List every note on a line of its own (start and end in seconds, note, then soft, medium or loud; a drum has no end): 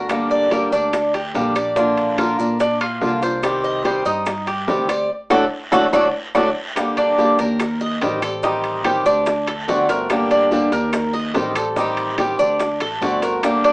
0.00 0.66 G1 medium
0.00 0.29 A#4 medium
0.09 0.49 D3 medium
0.09 0.50 G3 medium
0.09 0.50 A#3 medium
0.09 0.51 D4 medium
0.09 0.51 G4 medium
0.09 high bongo medium
0.09 high timbale medium
0.09 long guiro medium
0.09 claves medium
0.09 maracas medium
0.31 0.51 D5 medium
0.31 maracas soft
0.51 0.71 D3 medium
0.51 0.71 G3 medium
0.51 0.72 A#3 medium
0.51 0.72 D4 medium
0.51 0.71 G4 medium
0.51 0.72 A#4 medium
0.51 high bongo medium
0.51 high timbale medium
0.51 short guiro medium
0.51 maracas soft
0.72 1.31 D2 medium
0.72 0.92 A#3 soft
0.72 1.13 D4 medium
0.72 0.93 D4 soft
0.72 0.92 G4 soft
0.72 high bongo soft
0.72 short guiro medium
0.72 maracas medium
0.93 muted steel-string acoustic guitar stroke medium
0.93 high bongo medium
0.93 high timbale medium
0.93 long guiro medium
0.93 claves medium
0.93 maracas medium
1.14 1.55 G4 medium
1.14 high bongo soft
1.14 high timbale medium
1.14 maracas soft
1.34 2.33 A#1 medium
1.34 1.55 D3 medium
1.34 1.55 G3 medium
1.34 1.55 A#3 medium
1.34 1.55 D4 medium
1.34 1.54 G4 medium
1.34 high bongo medium
1.34 low bongo medium
1.34 short guiro medium
1.34 maracas soft
1.55 1.75 A#3 soft
1.55 1.76 D4 soft
1.55 1.76 G4 soft
1.55 1.76 D5 medium
1.55 high bongo soft
1.55 high timbale medium
1.55 short guiro medium
1.55 claves medium
1.55 maracas medium
1.76 2.16 D3 medium
1.76 2.17 A#3 medium
1.76 2.17 D4 medium
1.76 2.18 D4 medium
1.76 2.18 F4 medium
1.76 high bongo medium
1.76 long guiro medium
1.76 maracas medium
1.97 high timbale medium
1.97 maracas soft
2.17 2.38 D3 medium
2.17 2.38 A#3 medium
2.17 2.38 D4 medium
2.17 2.37 F4 medium
2.17 2.59 A#4 medium
2.17 high bongo medium
2.17 high timbale loud
2.17 short guiro medium
2.17 claves medium
2.17 maracas soft
2.38 2.98 A#2 medium
2.38 2.58 A#3 soft
2.38 2.59 D4 soft
2.38 2.59 F4 soft
2.38 high bongo soft
2.38 short guiro medium
2.38 maracas medium
2.59 2.80 D4 medium
2.59 muted steel-string acoustic guitar stroke medium
2.59 high bongo medium
2.59 high timbale medium
2.59 long guiro medium
2.59 maracas medium
2.81 3.21 F4 medium
2.81 high bongo soft
2.81 high timbale medium
2.81 claves medium
2.81 maracas soft
3.01 4.00 C2 loud
3.01 3.21 D3 medium
3.01 3.22 A#3 medium
3.01 3.22 D4 medium
3.01 3.21 F4 medium
3.01 high bongo medium
3.01 low bongo medium
3.01 short guiro medium
3.01 maracas soft
3.22 3.43 A#3 soft
3.22 3.43 D4 soft
3.22 3.42 F4 medium
3.22 3.63 C5 medium
3.22 high bongo soft
3.22 high timbale medium
3.22 short guiro medium
3.22 maracas medium
3.43 3.83 C3 medium
3.43 3.84 D#3 medium
3.43 3.84 G3 medium
3.43 3.85 C4 medium
3.43 3.85 G4 medium
3.43 high bongo medium
3.43 high timbale medium
3.43 long guiro medium
3.43 claves medium
3.43 maracas medium
3.64 3.84 D#5 medium
3.64 maracas soft
3.84 4.05 C3 medium
3.84 4.05 D#3 medium
3.84 4.05 G3 medium
3.84 4.05 C4 medium
3.84 4.04 G4 medium
3.84 4.05 C5 medium
3.84 high bongo medium
3.84 high timbale medium
3.84 short guiro medium
3.84 maracas soft
4.05 4.64 G2 medium
4.05 4.25 G3 soft
4.05 4.26 C4 soft
4.05 4.46 D#4 medium
4.05 4.25 G4 soft
4.05 high bongo soft
4.05 short guiro medium
4.05 maracas medium
4.26 muted steel-string acoustic guitar stroke medium
4.26 high bongo medium
4.26 high timbale medium
4.26 long guiro medium
4.26 claves medium
4.26 maracas medium
4.47 4.88 G4 medium
4.47 high bongo soft
4.47 high timbale medium
4.47 maracas soft
4.67 5.07 D2 medium
4.67 4.88 C3 medium
4.67 4.88 D#3 medium
4.67 4.88 G3 medium
4.67 4.88 C4 medium
4.67 4.87 G4 medium
4.67 high bongo medium
4.67 low bongo medium
4.67 low timbale medium
4.67 short guiro medium
4.67 maracas soft
4.88 5.10 G3 soft
4.88 5.09 C4 soft
4.88 5.09 G4 medium
4.88 5.09 D5 medium
4.88 high bongo soft
4.88 high timbale loud
4.88 short guiro medium
4.88 claves medium
4.88 maracas medium
5.30 5.46 D2 medium
5.30 5.44 F#3 medium
5.30 5.44 A3 medium
5.30 5.44 D4 medium
5.30 5.44 F#4 medium
5.30 5.44 A4 medium
5.30 high bongo loud
5.30 high timbale loud
5.30 claves loud
5.30 maracas loud
5.72 5.88 D2 medium
5.72 5.86 F#3 medium
5.72 5.86 A3 medium
5.72 5.86 D4 medium
5.72 5.86 F#4 loud
5.72 5.86 A4 loud
5.72 high bongo loud
5.72 high timbale loud
5.72 long guiro medium
5.72 claves medium
5.72 maracas loud
5.93 6.09 D2 medium
5.93 6.07 F#3 medium
5.93 6.06 A3 medium
5.93 6.07 D4 loud
5.93 6.07 D4 medium
5.93 6.07 F#4 medium
5.93 6.07 A4 medium
5.93 high bongo loud
5.93 high timbale medium
5.93 long guiro loud
5.93 claves loud
5.93 maracas loud
6.35 6.51 D2 loud
6.35 6.48 F#3 loud
6.35 6.48 A3 loud
6.35 6.48 D4 loud
6.35 6.49 D4 medium
6.35 6.49 F#4 medium
6.35 6.49 A4 medium
6.35 high bongo medium
6.35 high timbale loud
6.35 long guiro loud
6.35 claves loud
6.35 maracas medium
6.76 7.16 D3 medium
6.76 7.17 G3 medium
6.76 7.18 A#3 medium
6.76 7.18 D4 medium
6.76 7.18 G4 medium
6.76 high bongo medium
6.76 high timbale medium
6.76 claves medium
6.76 maracas medium
6.97 7.38 D4 medium
6.97 high bongo soft
6.97 high timbale medium
6.97 maracas soft
7.18 7.38 D3 medium
7.18 7.38 G3 medium
7.18 7.39 A#3 medium
7.18 7.39 D4 medium
7.18 7.38 G4 medium
7.18 high bongo medium
7.18 short guiro medium
7.18 maracas soft
7.39 7.98 D#2 loud
7.39 7.60 A#3 soft
7.39 7.60 D4 soft
7.39 7.59 G4 medium
7.39 7.80 A#4 medium
7.39 high bongo soft
7.39 high timbale medium
7.39 short guiro medium
7.39 maracas medium
7.60 muted steel-string acoustic guitar stroke medium
7.60 high bongo medium
7.60 high timbale medium
7.60 long guiro medium
7.60 claves medium
7.60 maracas medium
7.81 8.21 D#5 medium
7.81 high bongo soft
7.81 maracas soft
8.01 9.00 A1 medium
8.01 8.22 D#3 medium
8.01 8.22 G3 medium
8.01 8.22 C4 medium
8.01 8.21 G4 medium
8.01 high bongo medium
8.01 low bongo medium
8.01 high timbale medium
8.01 short guiro medium
8.01 maracas soft
8.22 8.43 G3 soft
8.22 8.43 C4 soft
8.22 8.42 G4 soft
8.22 8.43 A4 medium
8.22 high timbale medium
8.22 short guiro medium
8.22 claves medium
8.22 maracas medium
8.43 8.83 D#3 medium
8.43 8.84 G3 medium
8.43 8.85 C4 medium
8.43 8.84 D#4 medium
8.43 8.85 G4 medium
8.43 high bongo medium
8.43 long guiro medium
8.43 maracas medium
8.64 high timbale medium
8.64 maracas soft
8.84 9.05 D#3 medium
8.84 9.05 G3 medium
8.84 9.05 C4 medium
8.84 9.05 G4 medium
8.84 9.04 G4 medium
8.84 high bongo medium
8.84 high timbale loud
8.84 short guiro medium
8.84 claves medium
8.84 maracas soft
9.05 9.64 D2 loud
9.05 9.26 G3 soft
9.05 9.26 C4 soft
9.05 9.46 D4 medium
9.05 9.25 G4 soft
9.05 high bongo soft
9.05 short guiro medium
9.05 maracas medium
9.26 muted steel-string acoustic guitar stroke medium
9.26 high bongo medium
9.26 high timbale medium
9.26 long guiro medium
9.26 maracas medium
9.47 9.68 A4 medium
9.47 high bongo soft
9.47 high timbale medium
9.47 claves medium
9.47 maracas soft
9.67 10.66 G1 medium
9.67 9.88 D3 medium
9.67 9.88 A3 medium
9.67 9.88 C4 medium
9.67 9.87 F#4 medium
9.67 9.88 D5 medium
9.67 high bongo medium
9.67 low bongo medium
9.67 short guiro medium
9.67 maracas soft
9.88 10.10 A3 soft
9.88 10.09 C4 soft
9.88 10.09 F#4 medium
9.88 10.30 A#4 medium
9.88 high bongo soft
9.88 high timbale medium
9.88 short guiro medium
9.88 maracas medium
10.10 10.50 D3 medium
10.10 10.50 G3 medium
10.10 10.51 A#3 medium
10.10 10.51 D4 medium
10.10 10.52 G4 medium
10.10 high bongo medium
10.10 high timbale medium
10.10 long guiro medium
10.10 claves medium
10.10 maracas medium
10.31 10.71 D4 medium
10.31 high bongo soft
10.31 high timbale medium
10.31 maracas soft
10.51 10.71 D3 medium
10.51 10.71 G3 medium
10.51 10.72 A#3 medium
10.51 10.72 D4 medium
10.51 10.71 G4 medium
10.51 high bongo medium
10.51 short guiro medium
10.51 maracas soft
10.72 11.31 D#2 loud
10.72 10.93 A#3 soft
10.72 10.93 D4 soft
10.72 10.92 G4 medium
10.72 11.13 A#4 medium
10.72 high bongo soft
10.72 high timbale medium
10.72 short guiro medium
10.72 maracas medium
10.93 muted steel-string acoustic guitar stroke medium
10.93 high bongo medium
10.93 high timbale medium
10.93 long guiro medium
10.93 claves medium
10.93 maracas medium
11.14 11.54 D#5 medium
11.14 high bongo soft
11.14 maracas soft
11.34 12.33 A1 loud
11.34 11.54 D#3 medium
11.34 11.55 G3 medium
11.34 11.55 C4 medium
11.34 11.54 G4 medium
11.34 high bongo medium
11.34 low bongo medium
11.34 high timbale medium
11.34 low timbale medium
11.34 short guiro medium
11.34 maracas soft
11.55 11.75 G3 soft
11.55 11.76 C4 soft
11.55 11.75 G4 medium
11.55 11.76 A4 medium
11.55 high timbale loud
11.55 short guiro medium
11.55 claves medium
11.55 maracas medium
11.76 12.16 D#3 medium
11.76 12.17 G3 medium
11.76 12.18 C4 medium
11.76 12.17 D#4 medium
11.76 12.18 G4 medium
11.76 high bongo medium
11.76 long guiro medium
11.76 maracas loud
11.97 high timbale medium
11.97 maracas soft
12.18 12.38 D#3 medium
12.18 12.38 G3 medium
12.18 12.39 C4 medium
12.18 12.39 G4 medium
12.18 12.37 G4 medium
12.18 high bongo medium
12.18 high timbale medium
12.18 short guiro medium
12.18 claves medium
12.18 maracas soft
12.39 12.78 D2 medium
12.39 12.60 G3 soft
12.39 12.59 C4 soft
12.39 12.79 D4 medium
12.39 12.59 G4 soft
12.39 high bongo soft
12.39 short guiro medium
12.39 maracas medium
12.59 muted steel-string acoustic guitar stroke medium
12.59 high bongo medium
12.59 high timbale medium
12.59 long guiro medium
12.59 maracas medium
12.80 13.00 A1 medium
12.80 13.01 A4 medium
12.80 high bongo soft
12.80 high timbale medium
12.80 claves medium
12.80 maracas soft
13.01 13.73 G1 medium
13.01 13.21 D3 medium
13.01 13.22 A3 medium
13.01 13.22 C4 medium
13.01 13.21 F#4 medium
13.01 13.22 D5 medium
13.01 high bongo medium
13.01 low bongo medium
13.01 short guiro medium
13.01 maracas soft
13.22 13.43 A3 soft
13.22 13.43 C4 soft
13.22 13.42 F#4 soft
13.22 13.63 A#4 medium
13.22 high bongo soft
13.22 high timbale medium
13.22 short guiro medium
13.22 maracas medium
13.43 13.73 D3 medium
13.43 13.73 G3 medium
13.43 13.73 A#3 medium
13.43 13.73 D4 medium
13.43 13.73 G4 medium
13.43 high bongo medium
13.43 high timbale loud
13.43 long guiro medium
13.43 claves medium
13.43 maracas medium
13.64 13.73 D4 medium
13.64 high bongo soft
13.64 high timbale medium
13.64 maracas soft